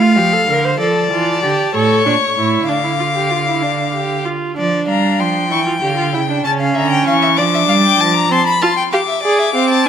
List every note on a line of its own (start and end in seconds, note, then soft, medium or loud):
0.00 0.19 A3 medium
0.00 0.19 F4 medium
0.00 0.79 F5 medium
0.17 0.48 F3 medium
0.17 0.35 G4 medium
0.33 0.48 A4 medium
0.48 0.79 D3 medium
0.48 0.66 A#4 medium
0.65 0.79 C5 medium
0.80 1.09 F3 medium
0.80 1.09 A4 medium
0.80 1.71 D5 medium
0.80 1.76 A5 medium
1.12 1.42 E3 medium
1.12 1.42 F4 medium
1.43 1.51 D3 medium
1.43 1.74 G4 medium
1.74 2.05 A2 medium
1.74 2.05 A4 medium
1.74 2.67 C#5 medium
1.74 2.68 C#6 medium
2.06 2.14 A#2 medium
2.06 2.14 D4 medium
2.37 2.68 A2 medium
2.37 2.70 E4 medium
2.69 4.23 D3 medium
2.69 2.83 D4 medium
2.69 4.23 F5 medium
2.69 4.23 D6 medium
2.84 2.90 E4 soft
2.99 3.06 F4 soft
3.15 3.32 G4 soft
3.31 3.46 F4 soft
3.47 3.63 E4 soft
3.62 3.94 D4 soft
3.94 4.27 G4 medium
4.25 4.57 F4 medium
4.57 4.86 F3 medium
4.57 5.47 D4 medium
4.57 4.87 D5 medium
4.89 5.21 G3 medium
4.89 5.21 F5 medium
4.89 5.22 A#5 medium
5.20 5.53 F3 medium
5.20 6.44 G5 medium
5.20 5.51 C6 medium
5.51 5.82 E3 medium
5.51 5.66 E4 medium
5.51 5.59 C#6 medium
5.66 5.73 F4 medium
5.82 6.15 D3 medium
5.82 5.96 G4 medium
5.82 6.16 F5 medium
5.97 6.13 F4 medium
6.14 6.44 C#3 medium
6.14 6.20 E4 medium
6.14 6.44 G5 medium
6.29 6.46 D4 medium
6.44 6.75 C#3 medium
6.44 7.40 C#4 medium
6.44 6.51 A5 medium
6.44 6.53 A5 medium
6.60 6.77 F5 medium
6.75 7.06 D3 medium
6.75 6.90 E5 medium
6.75 7.06 A#5 medium
6.91 7.06 G5 medium
7.07 7.40 E3 medium
7.07 7.13 F5 medium
7.07 7.39 C#6 medium
7.22 7.28 E5 medium
7.37 7.68 F3 medium
7.37 8.30 D4 medium
7.37 7.44 D5 medium
7.37 8.31 D6 medium
7.54 7.60 E5 medium
7.69 7.99 G3 medium
7.69 7.75 F5 medium
7.85 8.02 G5 medium
8.00 8.30 F3 medium
8.00 8.16 A5 medium
8.16 8.33 A#5 medium
8.31 8.39 C4 medium
8.31 8.61 A5 medium
8.31 8.46 C6 medium
8.47 8.63 B5 medium
8.62 8.70 F4 medium
8.62 8.76 A5 medium
8.62 8.92 C6 medium
8.77 8.83 G5 medium
8.93 9.01 G4 medium
8.93 8.99 F5 medium
8.93 9.89 D6 medium
9.08 9.23 E5 medium
9.23 9.54 G#4 medium
9.23 9.40 D5 medium
9.39 9.54 E5 medium
9.55 9.87 C4 medium
9.55 9.69 F5 medium
9.70 9.87 A5 medium